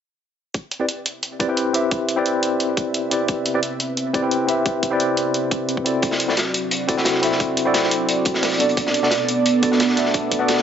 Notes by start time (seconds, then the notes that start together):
0.54 C4 B4 E5, kick, closed hi-hat
0.71 closed hi-hat
0.80 C4 E4 G4 B4 D5
0.89 closed hi-hat
1.06 closed hi-hat
1.23 closed hi-hat
1.39 C4 E4 G4 B4 D5, kick, closed hi-hat
1.48 C4 E4 G4 B4 G5
1.57 closed hi-hat
1.73 C4 E4 G4 B4 E5, closed hi-hat
1.91 kick, closed hi-hat
2.09 closed hi-hat
2.16 C4 E4 G4 B4 D5
2.26 closed hi-hat
2.43 closed hi-hat
2.60 closed hi-hat
2.77 kick, closed hi-hat
2.94 closed hi-hat
3.10 C4 E4 G4 B4 D5, closed hi-hat
3.28 kick, closed hi-hat
3.46 closed hi-hat
3.54 C4 E4 G4 B4 D5
3.63 closed hi-hat
3.80 closed hi-hat
3.97 closed hi-hat
4.13 C4 E4 G4 B4 D5, kick, closed hi-hat
4.22 C4 E4 G4 B4 G5
4.31 closed hi-hat
4.47 C4 E4 G4 B4 E5, closed hi-hat
4.66 kick, closed hi-hat
4.83 kick, closed hi-hat
4.90 C4 E4 G4 B4 D5
5.00 closed hi-hat
5.17 closed hi-hat
5.34 closed hi-hat
5.51 kick, closed hi-hat
5.69 closed hi-hat
5.77 kick
5.84 C4 E4 F#4 A4 D5, closed hi-hat
6.02 F#4 D5, kick, closed hi-hat
6.11 snare
6.20 closed hi-hat
6.28 C4 E4 F#4 A4 D5, snare
6.37 snare, closed hi-hat
6.54 closed hi-hat
6.71 closed hi-hat
6.88 C4 E4 F#4 A4 D5, kick, closed hi-hat
6.97 C4 E4 F#4 A4 F#5, snare
7.05 snare, closed hi-hat
7.14 snare
7.22 C4 E4 F#4 A4 E5, snare, closed hi-hat
7.32 snare
7.40 kick, closed hi-hat
7.57 closed hi-hat
7.65 C4 E4 F#4 A4 D5
7.74 snare, closed hi-hat
7.83 snare
7.91 closed hi-hat
8.09 closed hi-hat
8.25 kick, closed hi-hat
8.34 snare
8.43 snare, closed hi-hat, open hi-hat
8.51 snare
8.59 B3 D4 F#4 A4 D5, closed hi-hat
8.69 closed hi-hat
8.77 B3 A4, kick, closed hi-hat
8.87 snare
8.94 closed hi-hat
9.03 B3 D4 F#4 A4 D5, snare
9.11 snare, closed hi-hat
9.28 closed hi-hat
9.46 closed hi-hat
9.62 B3 D4 F#4 A4 D5, kick, closed hi-hat
9.71 B3 D4 F#4 A4 F#5, snare
9.80 snare, closed hi-hat
9.89 snare
9.96 B3 D4 F#4 A4 E5, snare, closed hi-hat
10.06 snare
10.14 kick, closed hi-hat
10.31 kick, closed hi-hat
10.39 B3 D4 F#4 A4 D5
10.48 snare, closed hi-hat
10.57 snare